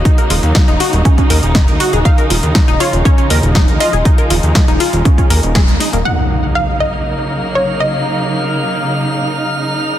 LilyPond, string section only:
\new Staff \with { instrumentName = "String section" } { \clef bass \time 4/4 \key ees \minor \tempo 4 = 120 << { <des ees'>1~ | <des ees'>1~ | <des ees'>1 | <des ees'>1~ |
<des ees'>1 | } \\ { <ges bes>1 | <f aes>1~ | <f aes>1 | <ges bes>1~ |
<ges bes>1 | } >> }